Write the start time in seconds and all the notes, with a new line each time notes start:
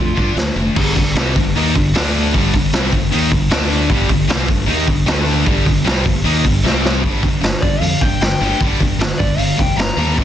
Already playing: D3 A3 F4
0.00 F2
0.16 G2 D3 A3 D4, kick, open hi-hat
0.36 D2 D3 A3, snare, open hi-hat
0.56 F1 D3 A3, open hi-hat
0.76 G1 G2 D3 G3, kick, crash
0.95 G1 G2 D3, kick, open hi-hat
1.15 C2 C3 G3 C4, snare, open hi-hat
1.35 G1 G2 D3, kick, open hi-hat
1.56 D#2 D#3 A#3 D#4, open hi-hat
1.75 G1 G2 D3, kick, open hi-hat
1.94 D2 D3 A3 D4, snare, open hi-hat
2.14 open hi-hat
2.33 G1 G2 D3 G3, kick, open hi-hat
2.53 G1 G2 D3, kick, open hi-hat
2.73 C2 C3 G3 C4, snare, open hi-hat
2.92 G1 G2 D3, kick, open hi-hat
3.12 D#2 D#3 A#3 D#4, open hi-hat
3.31 G1 G2 D3, kick, open hi-hat
3.50 D2 D3 A3 D4, snare, open hi-hat
3.70 snare, open hi-hat
3.90 G1 G2 D3 G3, kick, open hi-hat
4.09 G1 G2 D3, kick, open hi-hat
4.28 C2 C3 G3 C4, snare, open hi-hat
4.47 G1 G2 D3, kick, open hi-hat
4.66 D#2 D#3 A#3 D#4, open hi-hat
4.85 G1 G2 D3, kick, open hi-hat
5.06 D2 D3 A3 D4, snare, open hi-hat
5.26 snare, open hi-hat
5.45 G1 G2 D3 G3, kick, open hi-hat
5.66 G1 G2 D3, kick, open hi-hat
5.84 C2 C3 G3 C4, snare, open hi-hat
6.05 G1 G2 D3, kick, open hi-hat
6.24 D#2 D#3 A#3 D#4, open hi-hat
6.44 G1 G2 D3, kick, open hi-hat
6.63 C2 C3 G3 C4, snare
6.85 snare
7.03 G1 G2 D3 G3, kick, open hi-hat
7.23 G2 D3, kick, open hi-hat
7.41 G1 G2 D3, snare, open hi-hat
7.61 G2 D3 D5, kick, open hi-hat
7.80 F2 G2 D3 F5, open hi-hat
8.01 G1 G2 D3 G5, kick, open hi-hat
8.21 G1 G2 D3 G5, snare, open hi-hat
8.40 G1 G2 D3 G3, snare, open hi-hat
8.60 G1 G2 D3 G3, kick, open hi-hat
8.80 G1 G2 D3, kick, open hi-hat
8.98 G1 G2 D3, snare, open hi-hat
9.18 G1 G2 D3 D5, kick, open hi-hat
9.38 G1 G2 D3 F5, open hi-hat
9.57 F1 G2 D3 G5, kick, open hi-hat
9.76 G1 G2 D3 A#5, snare, open hi-hat
9.97 D#2 G2 D3 G3, open hi-hat
10.16 F1 F2 C3 F3, kick, open hi-hat